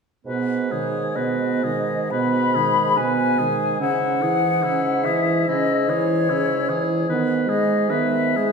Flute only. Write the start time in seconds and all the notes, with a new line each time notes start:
0.70 C#5
1.15 D#5
2.11 B5
2.97 G#5
3.80 F#5
5.04 E5
5.48 D#5
5.89 C#5
7.47 D#5
7.90 E5